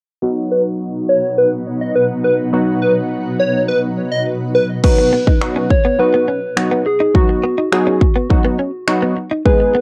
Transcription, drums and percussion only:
4.84 kick loud
4.84 crash medium
5.27 kick medium
5.42 finger snap loud
5.71 kick loud
6.57 finger snap loud
7.15 kick loud
7.72 finger snap loud
8.01 kick loud
8.30 kick medium
8.88 finger snap loud
9.45 kick loud

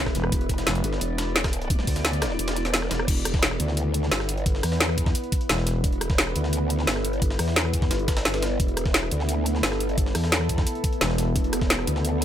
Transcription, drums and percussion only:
0.06 kick medium
0.06 cross-stick soft
0.06 snare medium
0.15 snare soft
0.15 closed hi-hat medium
0.24 cross-stick medium
0.32 kick loud
0.32 closed hi-hat loud
0.32 closed hi-hat medium
0.41 closed hi-hat soft
0.49 kick medium
0.49 closed hi-hat medium
0.58 snare medium
0.58 closed hi-hat soft
0.67 snare loud
0.67 closed hi-hat loud
0.67 closed hi-hat medium
0.75 closed hi-hat soft
0.84 closed hi-hat medium
0.93 snare medium
1.01 closed hi-hat medium
1.01 closed hi-hat loud
1.18 snare loud
1.18 closed hi-hat medium
1.36 snare loud
1.36 closed hi-hat loud
1.36 closed hi-hat medium
1.44 kick loud
1.44 cross-stick soft
1.44 snare loud
1.44 closed hi-hat medium
1.53 closed hi-hat medium
1.62 closed hi-hat medium
1.70 kick loud
1.70 closed hi-hat medium
1.70 closed hi-hat loud
1.79 snare medium
1.87 kick medium
1.87 closed hi-hat medium
1.87 open hi-hat medium
1.96 snare medium
1.96 closed hi-hat soft
2.05 snare loud
2.05 closed hi-hat medium
2.05 closed hi-hat loud
2.13 closed hi-hat soft
2.22 cross-stick medium
2.22 snare loud
2.22 closed hi-hat medium
2.30 snare soft
2.39 closed hi-hat medium
2.39 closed hi-hat loud
2.48 snare loud
2.48 closed hi-hat medium
2.48 closed hi-hat soft
2.56 snare soft
2.56 closed hi-hat medium
2.65 snare soft
2.65 closed hi-hat medium
2.74 snare loud
2.74 closed hi-hat medium
2.74 closed hi-hat loud
2.82 cross-stick soft
2.82 snare soft
2.91 snare loud
2.91 closed hi-hat medium
2.99 cross-stick medium
3.08 kick loud
3.08 closed hi-hat medium
3.08 crash loud
3.17 closed hi-hat soft
3.25 cross-stick medium
3.25 closed hi-hat medium
3.25 closed hi-hat loud
3.34 kick loud
3.34 snare medium
3.42 snare loud
3.42 closed hi-hat medium
3.51 cross-stick soft
3.60 closed hi-hat medium
3.60 closed hi-hat loud
3.68 snare medium
3.77 closed hi-hat medium
3.94 closed hi-hat medium
3.94 closed hi-hat loud
4.03 snare soft
4.12 snare loud
4.12 closed hi-hat medium
4.20 cross-stick soft
4.20 snare medium
4.29 closed hi-hat loud
4.29 closed hi-hat medium
4.37 closed hi-hat soft
4.46 kick loud
4.46 closed hi-hat medium
4.55 snare medium
4.63 cross-stick medium
4.63 closed hi-hat medium
4.63 open hi-hat medium
4.72 snare medium
4.80 snare loud
4.80 closed hi-hat medium
4.89 cross-stick soft
4.98 kick medium
4.98 closed hi-hat loud
4.98 closed hi-hat medium
5.06 kick loud
5.06 snare medium
5.15 closed hi-hat medium
5.24 closed hi-hat soft
5.32 kick loud
5.32 closed hi-hat medium
5.41 closed hi-hat soft
5.49 snare loud
5.49 closed hi-hat medium
5.58 snare medium
5.67 snare soft
5.67 closed hi-hat medium
5.67 closed hi-hat loud
5.84 kick loud
5.84 closed hi-hat medium
5.92 closed hi-hat soft
6.01 cross-stick soft
6.01 closed hi-hat medium
6.10 kick loud
6.10 snare medium
6.18 snare loud
6.18 closed hi-hat medium
6.27 cross-stick soft
6.36 closed hi-hat medium
6.44 snare medium
6.53 closed hi-hat medium
6.70 closed hi-hat medium
6.79 snare soft
6.87 snare loud
6.87 closed hi-hat loud
6.87 closed hi-hat medium
6.96 cross-stick soft
6.96 snare medium
7.05 closed hi-hat medium
7.13 closed hi-hat soft
7.22 kick loud
7.22 closed hi-hat medium
7.30 snare medium
7.39 cross-stick soft
7.39 closed hi-hat medium
7.39 open hi-hat medium
7.48 snare medium
7.56 snare loud
7.56 closed hi-hat medium
7.65 cross-stick soft
7.74 kick medium
7.74 closed hi-hat medium
7.82 kick loud
7.82 snare medium
7.91 snare loud
7.91 closed hi-hat medium
7.99 closed hi-hat soft
8.08 kick loud
8.08 snare loud
8.08 closed hi-hat medium
8.17 snare loud
8.17 closed hi-hat medium
8.25 snare loud
8.25 closed hi-hat medium
8.34 snare loud
8.34 closed hi-hat medium
8.42 snare loud
8.42 closed hi-hat medium
8.60 kick loud
8.60 closed hi-hat medium
8.68 closed hi-hat soft
8.77 cross-stick soft
8.77 closed hi-hat medium
8.86 kick loud
8.86 snare medium
8.94 snare loud
8.94 closed hi-hat medium
9.03 cross-stick soft
9.11 closed hi-hat medium
9.20 snare medium
9.29 closed hi-hat medium
9.46 closed hi-hat medium
9.55 snare soft
9.63 snare loud
9.63 closed hi-hat medium
9.72 cross-stick soft
9.72 snare medium
9.80 closed hi-hat medium
9.89 closed hi-hat soft
9.98 kick loud
9.98 closed hi-hat medium
10.06 snare medium
10.15 cross-stick soft
10.15 closed hi-hat medium
10.15 open hi-hat medium
10.24 snare medium
10.32 snare loud
10.32 closed hi-hat medium
10.41 cross-stick soft
10.49 kick medium
10.49 closed hi-hat loud
10.49 closed hi-hat medium
10.58 kick loud
10.58 snare medium
10.67 closed hi-hat medium
10.75 closed hi-hat soft
10.84 kick loud
10.84 closed hi-hat medium
10.93 closed hi-hat soft
11.01 snare loud
11.01 closed hi-hat medium
11.10 snare medium
11.18 snare soft
11.18 closed hi-hat loud
11.18 closed hi-hat medium
11.36 kick loud
11.36 closed hi-hat medium
11.44 closed hi-hat soft
11.53 cross-stick soft
11.53 closed hi-hat loud
11.53 closed hi-hat medium
11.61 kick loud
11.61 snare medium
11.70 snare loud
11.70 closed hi-hat medium
11.79 cross-stick soft
11.87 closed hi-hat loud
11.87 closed hi-hat medium
11.96 snare medium
12.05 closed hi-hat medium

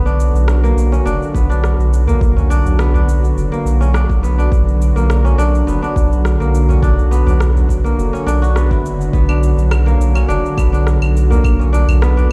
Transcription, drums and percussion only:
0.07 cabasa soft
0.20 cabasa medium
0.35 cabasa soft
0.48 cross-stick loud
0.48 cabasa soft
0.64 cabasa soft
0.78 cabasa medium
0.93 cabasa soft
1.07 cabasa soft
1.22 cabasa soft
1.34 kick medium
1.34 udu medium
1.34 cabasa medium
1.51 cabasa soft
1.64 cross-stick medium
1.64 cabasa soft
1.80 cabasa soft
1.93 cabasa medium
2.07 udu medium
2.07 cabasa soft
2.21 kick loud
2.21 cabasa soft
2.36 udu medium
2.36 cabasa soft
2.51 cabasa medium
2.65 udu medium
2.65 cabasa soft
2.79 cross-stick loud
2.79 cabasa soft
2.94 udu medium
2.94 cabasa soft
3.09 cabasa medium
3.24 cabasa soft
3.38 cabasa soft
3.53 cabasa soft
3.67 cabasa medium
3.82 cabasa soft
3.94 cross-stick loud
3.94 cabasa soft
4.10 kick loud
4.10 cabasa soft
4.24 cabasa medium
4.40 cabasa soft
4.52 kick loud
4.52 cabasa soft
4.68 cabasa soft
4.82 cabasa medium
4.97 cabasa soft
5.10 cross-stick loud
5.10 cabasa soft
5.26 cabasa soft
5.39 cabasa medium
5.55 cabasa soft
5.68 cabasa soft
5.84 cabasa soft
5.96 kick loud
5.96 udu medium
5.96 cabasa medium
6.13 cabasa soft
6.25 cross-stick medium
6.25 cabasa soft
6.41 cabasa soft
6.55 cabasa medium
6.68 udu medium
6.68 cabasa soft
6.83 kick loud
6.83 cabasa soft
6.98 udu medium
6.98 cabasa soft
7.12 cabasa medium
7.27 udu medium
7.27 cabasa soft
7.40 cross-stick medium
7.40 cabasa soft
7.56 udu medium
7.56 cabasa soft
7.69 kick medium
7.69 cabasa medium
7.86 cabasa soft
7.99 cabasa soft
8.15 cabasa soft
8.28 cabasa medium
8.44 cabasa soft
8.56 cross-stick medium
8.56 cabasa soft
8.71 kick loud
8.71 cabasa soft
8.86 cabasa medium
9.01 cabasa soft
9.13 kick loud
9.13 cabasa soft
9.29 cabasa soft
9.29 claves medium
9.43 cabasa medium
9.59 cabasa soft
9.71 cross-stick medium
9.71 cabasa soft
9.71 claves medium
9.88 cabasa soft
10.01 cabasa medium
10.15 cabasa soft
10.15 claves medium
10.30 cabasa soft
10.46 cabasa soft
10.57 kick loud
10.57 udu medium
10.57 cabasa medium
10.57 claves medium
10.74 cabasa soft
10.87 cross-stick medium
10.87 cabasa soft
11.02 cabasa soft
11.02 claves medium
11.17 cabasa medium
11.31 udu medium
11.31 cabasa soft
11.44 kick loud
11.44 cabasa soft
11.44 claves medium
11.60 udu medium
11.60 cabasa soft
11.74 cabasa medium
11.88 udu medium
11.88 cabasa soft
11.88 claves medium
12.02 cross-stick loud
12.02 cabasa soft
12.17 udu medium
12.17 cabasa soft

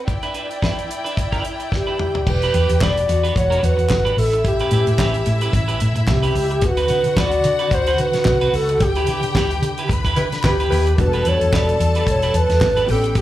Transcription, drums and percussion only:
0.08 kick loud
0.08 closed hi-hat medium
0.23 closed hi-hat soft
0.34 closed hi-hat medium
0.51 closed hi-hat soft
0.62 kick loud
0.62 snare loud
0.79 closed hi-hat soft
0.91 closed hi-hat medium
1.06 closed hi-hat soft
1.17 kick loud
1.17 closed hi-hat medium
1.32 kick medium
1.32 closed hi-hat soft
1.45 closed hi-hat medium
1.60 closed hi-hat soft
1.72 kick loud
1.72 snare medium
1.99 mid tom medium
2.15 floor tom medium
2.27 kick loud
2.27 crash medium
2.42 closed hi-hat soft
2.54 closed hi-hat medium
2.69 closed hi-hat medium
2.81 kick loud
2.81 snare loud
2.81 clap loud
2.97 closed hi-hat medium
3.09 closed hi-hat medium
3.24 closed hi-hat soft
3.36 kick loud
3.36 closed hi-hat medium
3.52 closed hi-hat soft
3.64 closed hi-hat medium
3.79 closed hi-hat soft
3.89 kick loud
3.89 snare loud
3.89 clap loud
4.06 closed hi-hat soft
4.18 open hi-hat medium
4.33 closed hi-hat medium
4.45 kick loud
4.45 closed hi-hat medium
4.59 closed hi-hat soft
4.71 closed hi-hat medium
4.87 closed hi-hat soft
4.99 kick loud
4.99 snare loud
4.99 clap loud
5.14 closed hi-hat soft
5.26 closed hi-hat medium
5.41 closed hi-hat soft
5.53 kick loud
5.53 closed hi-hat medium
5.69 closed hi-hat soft
5.80 closed hi-hat medium
5.96 closed hi-hat soft
6.07 kick loud
6.07 snare loud
6.07 clap loud
6.23 closed hi-hat soft
6.35 open hi-hat medium
6.51 closed hi-hat soft
6.61 kick loud
6.61 closed hi-hat medium
6.77 closed hi-hat soft
6.88 closed hi-hat medium
7.04 closed hi-hat soft
7.17 kick loud
7.17 snare loud
7.17 clap loud
7.31 closed hi-hat medium
7.44 closed hi-hat medium
7.59 closed hi-hat soft
7.71 kick loud
7.71 closed hi-hat medium
7.87 closed hi-hat soft
7.98 closed hi-hat medium
8.13 snare soft
8.13 closed hi-hat medium
8.25 kick loud
8.25 snare loud
8.25 clap medium
8.41 closed hi-hat soft
8.54 open hi-hat medium
8.69 closed hi-hat soft
8.80 kick loud
8.80 closed hi-hat medium
8.95 closed hi-hat soft
9.07 closed hi-hat medium
9.23 closed hi-hat soft
9.35 kick loud
9.35 snare loud
9.35 clap loud
9.51 closed hi-hat soft
9.63 closed hi-hat medium
9.78 closed hi-hat medium
9.89 kick loud
9.89 closed hi-hat medium
10.05 kick medium
10.05 closed hi-hat soft
10.16 closed hi-hat medium
10.32 snare soft
10.32 closed hi-hat soft
10.43 kick loud
10.43 snare loud
10.43 clap medium
10.60 closed hi-hat soft
10.72 open hi-hat medium
10.87 closed hi-hat soft
10.98 kick loud
10.98 closed hi-hat medium
11.13 closed hi-hat soft
11.25 closed hi-hat medium
11.41 closed hi-hat soft
11.53 kick loud
11.53 snare loud
11.53 clap loud
11.69 closed hi-hat soft
11.80 closed hi-hat medium
11.95 closed hi-hat soft
12.07 kick loud
12.07 closed hi-hat medium
12.22 closed hi-hat soft
12.34 closed hi-hat medium
12.50 snare soft
12.50 closed hi-hat soft
12.61 kick loud
12.61 snare loud
12.61 clap loud
12.77 closed hi-hat soft
12.88 open hi-hat medium
13.04 closed hi-hat medium
13.15 kick loud
13.15 closed hi-hat medium

